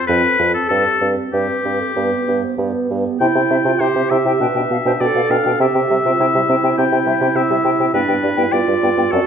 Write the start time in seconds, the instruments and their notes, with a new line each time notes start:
0.07 bassoon F2, clarinet C4, french horn A4, oboe B4
0.39 bassoon F2, clarinet C4
0.54 oboe A4
0.69 bassoon G2, clarinet C4, french horn G4, oboe A4
1.01 bassoon G2, clarinet C4
1.32 bassoon G2, clarinet C4, oboe G4, french horn B4
1.63 bassoon G2, clarinet C4
1.80 french horn A4
1.94 bassoon G2, clarinet B3, french horn B4
2.26 bassoon G2, clarinet B3
2.44 french horn C5
2.57 bassoon G2, clarinet B3, french horn B4
2.89 bassoon G2, clarinet B3
3.05 french horn G4
3.20 bassoon C3, french horn E4, clarinet E4, oboe G5, flute G5
3.35 bassoon C3, french horn E4, flute G5
3.50 bassoon C3, french horn C4, flute E5
3.65 bassoon C3, french horn E4, clarinet F4, flute G5
3.80 bassoon C3, french horn E4, clarinet G4, oboe C5, flute G5
3.95 bassoon C3, french horn C4, flute E5
4.10 bassoon C3, french horn E4, oboe E5, flute G5
4.25 bassoon C3, french horn E4, flute G5
4.39 bassoon B2, french horn D4, clarinet B4, flute G5
4.54 bassoon B2, french horn D4, flute G5
4.70 bassoon B2, french horn B3, flute F5
4.85 bassoon B2, french horn D4, clarinet C5, flute G5
5.00 bassoon B2, french horn D4, clarinet A4, oboe D5, flute G5
5.14 bassoon B2, french horn B3, flute F5
5.29 bassoon B2, french horn D4, oboe F5, flute G5
5.44 bassoon B2, french horn D4, flute G5
5.59 bassoon C3, french horn C4, clarinet G4, oboe E5, flute G5
5.73 bassoon C3, french horn C4, flute G5
5.89 bassoon C3, french horn G3, flute E5
6.05 bassoon C3, french horn C4, clarinet F4, flute G5
6.20 bassoon C3, french horn C4, clarinet E4, flute G5
6.34 bassoon C3, french horn G3, flute E5
6.49 bassoon C3, french horn C4, flute G5
6.64 bassoon C3, french horn C4, flute G5
6.77 bassoon C3, french horn C4, oboe G5, flute G5
6.92 bassoon C3, french horn C4, flute G5
7.06 bassoon C3, french horn G3, flute E5
7.21 bassoon C3, french horn C4, flute G5
7.35 bassoon C3, french horn C4, oboe E5, flute G5
7.50 bassoon C3, french horn G3, flute E5
7.64 bassoon C3, french horn C4, flute G5
7.79 bassoon C3, french horn C4, flute G5
7.93 bassoon G2, french horn B3, clarinet D4, oboe B4, flute G5
8.08 bassoon G2, french horn B3, flute G5
8.23 bassoon G2, french horn G3, flute D5
8.36 bassoon G2, french horn B3, clarinet E4, flute G5
8.51 bassoon G2, french horn B3, clarinet F4, oboe D5, flute G5
8.67 bassoon G2, french horn G3, flute D5
8.83 bassoon G2, french horn B3, flute G5
8.97 bassoon G2, french horn B3, flute G5
9.11 bassoon F#2, french horn C4, clarinet F#4, oboe A4, flute D5